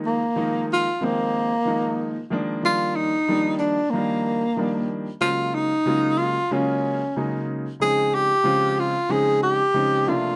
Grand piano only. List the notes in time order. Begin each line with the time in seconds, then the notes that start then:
Already playing: D#3 F3 G#3 A#3 D#4
0.36 D#3 F3 G#3 A#3 D#4
1.01 D#3 F3 G#3 A#3 C4
1.65 D#3 F3 G#3 A#3 D#4
2.30 D#3 F3 G#3 A#3 D4
2.63 D#3 F3 G3 A#3 D4
3.28 D#3 F3 G3 A#3 D4
3.93 D#3 F3 G3 A#3 D4
4.57 D#3 F3 G3 A#3 D4
5.21 C#3 F#3 G#3 A#3 F4
5.86 C#3 F#3 G#3 A#3 F4
6.51 C#3 F#3 G#3 A#3 F4
7.16 C#3 F#3 G#3 A#3 D#4
7.80 C#3 F3 G#3 C4 D#4
8.44 C#3 F3 G#3 C4 F4
9.09 C#3 F3 G#3 C4 D#4
9.74 C#3 F3 G#3 C4 D#4
10.07 C3 F3 A3 A#3 D4